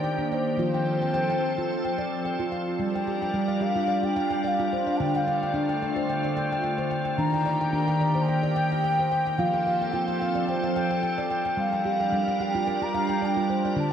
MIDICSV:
0, 0, Header, 1, 4, 480
1, 0, Start_track
1, 0, Key_signature, -2, "minor"
1, 0, Tempo, 551978
1, 506, Time_signature, 4, 2, 24, 8
1, 5304, Tempo, 547445
1, 12169, End_track
2, 0, Start_track
2, 0, Title_t, "Bansuri"
2, 0, Program_c, 0, 73
2, 0, Note_on_c, 0, 74, 90
2, 294, Note_on_c, 0, 72, 82
2, 307, Note_off_c, 0, 74, 0
2, 1963, Note_off_c, 0, 72, 0
2, 2424, Note_on_c, 0, 74, 80
2, 3150, Note_on_c, 0, 77, 94
2, 3163, Note_off_c, 0, 74, 0
2, 3512, Note_on_c, 0, 79, 99
2, 3525, Note_off_c, 0, 77, 0
2, 3889, Note_on_c, 0, 77, 88
2, 3903, Note_off_c, 0, 79, 0
2, 4322, Note_on_c, 0, 81, 70
2, 4335, Note_off_c, 0, 77, 0
2, 4352, Note_on_c, 0, 79, 95
2, 4365, Note_off_c, 0, 81, 0
2, 4486, Note_on_c, 0, 77, 83
2, 4499, Note_off_c, 0, 79, 0
2, 4758, Note_off_c, 0, 77, 0
2, 4758, Note_on_c, 0, 77, 54
2, 4840, Note_on_c, 0, 74, 72
2, 4853, Note_off_c, 0, 77, 0
2, 5551, Note_off_c, 0, 74, 0
2, 6251, Note_on_c, 0, 82, 99
2, 6705, Note_off_c, 0, 82, 0
2, 6738, Note_on_c, 0, 82, 96
2, 7215, Note_on_c, 0, 79, 98
2, 7228, Note_off_c, 0, 82, 0
2, 8185, Note_on_c, 0, 77, 88
2, 8199, Note_off_c, 0, 79, 0
2, 8655, Note_on_c, 0, 79, 83
2, 8668, Note_off_c, 0, 77, 0
2, 8902, Note_on_c, 0, 77, 78
2, 8915, Note_off_c, 0, 79, 0
2, 9144, Note_off_c, 0, 77, 0
2, 9150, Note_on_c, 0, 72, 71
2, 9832, Note_off_c, 0, 72, 0
2, 10115, Note_on_c, 0, 77, 89
2, 10847, Note_on_c, 0, 79, 92
2, 10860, Note_off_c, 0, 77, 0
2, 11203, Note_on_c, 0, 82, 107
2, 11216, Note_off_c, 0, 79, 0
2, 11574, Note_on_c, 0, 79, 89
2, 11587, Note_off_c, 0, 82, 0
2, 12038, Note_off_c, 0, 79, 0
2, 12048, Note_on_c, 0, 81, 100
2, 12169, Note_off_c, 0, 81, 0
2, 12169, End_track
3, 0, Start_track
3, 0, Title_t, "Handpan"
3, 0, Program_c, 1, 114
3, 0, Note_on_c, 1, 51, 72
3, 31, Note_on_c, 1, 79, 63
3, 160, Note_on_c, 1, 62, 65
3, 276, Note_on_c, 1, 74, 57
3, 397, Note_off_c, 1, 62, 0
3, 398, Note_off_c, 1, 79, 0
3, 473, Note_off_c, 1, 51, 0
3, 500, Note_on_c, 1, 53, 68
3, 514, Note_on_c, 1, 65, 76
3, 640, Note_off_c, 1, 74, 0
3, 646, Note_on_c, 1, 79, 54
3, 751, Note_off_c, 1, 65, 0
3, 875, Note_off_c, 1, 79, 0
3, 885, Note_on_c, 1, 79, 57
3, 982, Note_off_c, 1, 79, 0
3, 993, Note_on_c, 1, 79, 74
3, 1119, Note_off_c, 1, 79, 0
3, 1129, Note_on_c, 1, 79, 55
3, 1375, Note_on_c, 1, 65, 62
3, 1475, Note_off_c, 1, 79, 0
3, 1606, Note_off_c, 1, 65, 0
3, 1606, Note_on_c, 1, 79, 56
3, 1724, Note_on_c, 1, 74, 71
3, 1947, Note_off_c, 1, 79, 0
3, 1956, Note_off_c, 1, 74, 0
3, 1957, Note_on_c, 1, 79, 55
3, 2081, Note_on_c, 1, 65, 63
3, 2192, Note_on_c, 1, 77, 57
3, 2320, Note_off_c, 1, 65, 0
3, 2322, Note_off_c, 1, 79, 0
3, 2391, Note_off_c, 1, 53, 0
3, 2430, Note_on_c, 1, 55, 75
3, 2559, Note_off_c, 1, 77, 0
3, 2570, Note_on_c, 1, 79, 59
3, 2672, Note_on_c, 1, 67, 59
3, 2791, Note_off_c, 1, 79, 0
3, 2801, Note_on_c, 1, 79, 61
3, 2893, Note_off_c, 1, 55, 0
3, 2904, Note_on_c, 1, 55, 75
3, 3029, Note_on_c, 1, 77, 56
3, 3039, Note_off_c, 1, 67, 0
3, 3138, Note_on_c, 1, 67, 59
3, 3146, Note_off_c, 1, 55, 0
3, 3150, Note_off_c, 1, 79, 0
3, 3266, Note_on_c, 1, 65, 69
3, 3372, Note_on_c, 1, 74, 57
3, 3384, Note_off_c, 1, 77, 0
3, 3496, Note_off_c, 1, 67, 0
3, 3506, Note_on_c, 1, 67, 57
3, 3511, Note_off_c, 1, 65, 0
3, 3620, Note_on_c, 1, 77, 78
3, 3743, Note_on_c, 1, 79, 63
3, 3748, Note_off_c, 1, 74, 0
3, 3862, Note_off_c, 1, 67, 0
3, 3863, Note_on_c, 1, 74, 61
3, 3864, Note_off_c, 1, 77, 0
3, 3996, Note_on_c, 1, 65, 69
3, 4100, Note_off_c, 1, 79, 0
3, 4113, Note_on_c, 1, 72, 64
3, 4223, Note_off_c, 1, 74, 0
3, 4233, Note_on_c, 1, 74, 58
3, 4235, Note_off_c, 1, 65, 0
3, 4350, Note_on_c, 1, 50, 76
3, 4351, Note_on_c, 1, 62, 85
3, 4474, Note_off_c, 1, 74, 0
3, 4477, Note_off_c, 1, 72, 0
3, 4477, Note_on_c, 1, 79, 64
3, 4588, Note_off_c, 1, 62, 0
3, 4589, Note_on_c, 1, 74, 64
3, 4710, Note_off_c, 1, 79, 0
3, 4721, Note_on_c, 1, 79, 60
3, 4817, Note_on_c, 1, 62, 79
3, 4940, Note_off_c, 1, 79, 0
3, 4950, Note_on_c, 1, 79, 60
3, 4955, Note_off_c, 1, 74, 0
3, 5060, Note_off_c, 1, 62, 0
3, 5065, Note_on_c, 1, 74, 63
3, 5184, Note_on_c, 1, 72, 69
3, 5288, Note_off_c, 1, 79, 0
3, 5298, Note_on_c, 1, 79, 66
3, 5418, Note_off_c, 1, 74, 0
3, 5428, Note_off_c, 1, 72, 0
3, 5429, Note_on_c, 1, 74, 65
3, 5528, Note_off_c, 1, 79, 0
3, 5539, Note_on_c, 1, 79, 78
3, 5665, Note_off_c, 1, 79, 0
3, 5675, Note_on_c, 1, 79, 66
3, 5763, Note_off_c, 1, 79, 0
3, 5774, Note_on_c, 1, 79, 59
3, 5783, Note_off_c, 1, 74, 0
3, 5902, Note_on_c, 1, 72, 70
3, 6004, Note_off_c, 1, 79, 0
3, 6015, Note_on_c, 1, 79, 64
3, 6128, Note_off_c, 1, 79, 0
3, 6138, Note_on_c, 1, 79, 63
3, 6148, Note_off_c, 1, 72, 0
3, 6232, Note_off_c, 1, 50, 0
3, 6251, Note_on_c, 1, 51, 72
3, 6258, Note_on_c, 1, 62, 80
3, 6380, Note_off_c, 1, 79, 0
3, 6390, Note_on_c, 1, 79, 62
3, 6496, Note_on_c, 1, 74, 59
3, 6502, Note_off_c, 1, 62, 0
3, 6619, Note_off_c, 1, 79, 0
3, 6629, Note_on_c, 1, 79, 64
3, 6735, Note_on_c, 1, 62, 72
3, 6853, Note_off_c, 1, 79, 0
3, 6863, Note_on_c, 1, 79, 64
3, 6870, Note_off_c, 1, 74, 0
3, 6977, Note_on_c, 1, 74, 70
3, 6981, Note_off_c, 1, 62, 0
3, 7102, Note_on_c, 1, 72, 69
3, 7211, Note_off_c, 1, 79, 0
3, 7221, Note_on_c, 1, 79, 60
3, 7340, Note_off_c, 1, 74, 0
3, 7349, Note_off_c, 1, 72, 0
3, 7350, Note_on_c, 1, 74, 64
3, 7452, Note_off_c, 1, 79, 0
3, 7463, Note_on_c, 1, 79, 79
3, 7590, Note_off_c, 1, 79, 0
3, 7601, Note_on_c, 1, 79, 60
3, 7698, Note_off_c, 1, 79, 0
3, 7704, Note_off_c, 1, 74, 0
3, 7709, Note_on_c, 1, 79, 65
3, 7842, Note_on_c, 1, 72, 68
3, 7940, Note_off_c, 1, 79, 0
3, 7950, Note_on_c, 1, 79, 60
3, 8070, Note_off_c, 1, 79, 0
3, 8079, Note_off_c, 1, 72, 0
3, 8080, Note_on_c, 1, 79, 56
3, 8145, Note_off_c, 1, 51, 0
3, 8184, Note_on_c, 1, 53, 76
3, 8191, Note_on_c, 1, 65, 89
3, 8307, Note_off_c, 1, 79, 0
3, 8318, Note_on_c, 1, 79, 58
3, 8429, Note_off_c, 1, 65, 0
3, 8432, Note_on_c, 1, 77, 58
3, 8550, Note_off_c, 1, 79, 0
3, 8560, Note_on_c, 1, 79, 58
3, 8666, Note_on_c, 1, 65, 80
3, 8784, Note_off_c, 1, 79, 0
3, 8794, Note_on_c, 1, 79, 62
3, 8798, Note_off_c, 1, 77, 0
3, 8906, Note_off_c, 1, 65, 0
3, 8914, Note_on_c, 1, 77, 69
3, 9032, Note_on_c, 1, 74, 75
3, 9137, Note_off_c, 1, 79, 0
3, 9147, Note_on_c, 1, 79, 58
3, 9271, Note_off_c, 1, 77, 0
3, 9273, Note_off_c, 1, 74, 0
3, 9281, Note_on_c, 1, 77, 62
3, 9382, Note_off_c, 1, 79, 0
3, 9392, Note_on_c, 1, 79, 76
3, 9510, Note_off_c, 1, 79, 0
3, 9520, Note_on_c, 1, 79, 61
3, 9616, Note_off_c, 1, 79, 0
3, 9626, Note_on_c, 1, 79, 66
3, 9629, Note_off_c, 1, 77, 0
3, 9760, Note_on_c, 1, 74, 68
3, 9857, Note_off_c, 1, 79, 0
3, 9867, Note_on_c, 1, 79, 61
3, 9987, Note_off_c, 1, 79, 0
3, 9996, Note_off_c, 1, 74, 0
3, 9997, Note_on_c, 1, 79, 60
3, 10068, Note_off_c, 1, 53, 0
3, 10102, Note_on_c, 1, 55, 78
3, 10227, Note_off_c, 1, 79, 0
3, 10238, Note_on_c, 1, 79, 60
3, 10349, Note_on_c, 1, 67, 60
3, 10469, Note_off_c, 1, 79, 0
3, 10480, Note_on_c, 1, 79, 60
3, 10576, Note_off_c, 1, 55, 0
3, 10587, Note_on_c, 1, 55, 81
3, 10715, Note_off_c, 1, 67, 0
3, 10721, Note_on_c, 1, 77, 59
3, 10825, Note_off_c, 1, 55, 0
3, 10827, Note_off_c, 1, 79, 0
3, 10831, Note_on_c, 1, 67, 70
3, 10959, Note_on_c, 1, 65, 76
3, 11067, Note_off_c, 1, 77, 0
3, 11070, Note_on_c, 1, 74, 65
3, 11186, Note_off_c, 1, 67, 0
3, 11195, Note_off_c, 1, 65, 0
3, 11197, Note_on_c, 1, 67, 65
3, 11305, Note_on_c, 1, 77, 82
3, 11433, Note_on_c, 1, 79, 62
3, 11434, Note_off_c, 1, 74, 0
3, 11544, Note_off_c, 1, 77, 0
3, 11545, Note_off_c, 1, 67, 0
3, 11548, Note_on_c, 1, 74, 58
3, 11676, Note_on_c, 1, 65, 72
3, 11783, Note_off_c, 1, 79, 0
3, 11791, Note_on_c, 1, 72, 58
3, 11913, Note_off_c, 1, 65, 0
3, 11913, Note_off_c, 1, 74, 0
3, 11922, Note_on_c, 1, 74, 59
3, 12024, Note_on_c, 1, 50, 76
3, 12026, Note_on_c, 1, 62, 79
3, 12155, Note_off_c, 1, 72, 0
3, 12156, Note_off_c, 1, 74, 0
3, 12169, Note_off_c, 1, 50, 0
3, 12169, Note_off_c, 1, 62, 0
3, 12169, End_track
4, 0, Start_track
4, 0, Title_t, "Ambient pad"
4, 0, Program_c, 2, 92
4, 0, Note_on_c, 2, 51, 71
4, 0, Note_on_c, 2, 58, 63
4, 0, Note_on_c, 2, 67, 81
4, 486, Note_off_c, 2, 58, 0
4, 486, Note_off_c, 2, 67, 0
4, 488, Note_off_c, 2, 51, 0
4, 491, Note_on_c, 2, 53, 69
4, 495, Note_on_c, 2, 60, 61
4, 497, Note_on_c, 2, 69, 81
4, 2402, Note_off_c, 2, 53, 0
4, 2404, Note_off_c, 2, 60, 0
4, 2405, Note_off_c, 2, 69, 0
4, 2425, Note_on_c, 2, 62, 68
4, 2429, Note_on_c, 2, 55, 75
4, 2429, Note_on_c, 2, 70, 75
4, 4325, Note_off_c, 2, 62, 0
4, 4327, Note_off_c, 2, 55, 0
4, 4327, Note_off_c, 2, 70, 0
4, 4335, Note_on_c, 2, 50, 77
4, 4336, Note_on_c, 2, 57, 69
4, 4340, Note_on_c, 2, 65, 81
4, 6240, Note_off_c, 2, 50, 0
4, 6241, Note_off_c, 2, 57, 0
4, 6243, Note_off_c, 2, 65, 0
4, 6249, Note_on_c, 2, 51, 68
4, 6256, Note_on_c, 2, 58, 66
4, 6260, Note_on_c, 2, 67, 83
4, 8160, Note_off_c, 2, 51, 0
4, 8163, Note_off_c, 2, 58, 0
4, 8165, Note_off_c, 2, 67, 0
4, 8177, Note_on_c, 2, 53, 73
4, 8177, Note_on_c, 2, 69, 87
4, 8181, Note_on_c, 2, 60, 73
4, 10081, Note_off_c, 2, 53, 0
4, 10081, Note_off_c, 2, 69, 0
4, 10082, Note_off_c, 2, 60, 0
4, 10093, Note_on_c, 2, 70, 80
4, 10098, Note_on_c, 2, 55, 74
4, 10103, Note_on_c, 2, 62, 62
4, 11996, Note_off_c, 2, 70, 0
4, 11999, Note_off_c, 2, 55, 0
4, 12002, Note_off_c, 2, 62, 0
4, 12019, Note_on_c, 2, 50, 69
4, 12022, Note_on_c, 2, 65, 89
4, 12025, Note_on_c, 2, 57, 69
4, 12169, Note_off_c, 2, 50, 0
4, 12169, Note_off_c, 2, 57, 0
4, 12169, Note_off_c, 2, 65, 0
4, 12169, End_track
0, 0, End_of_file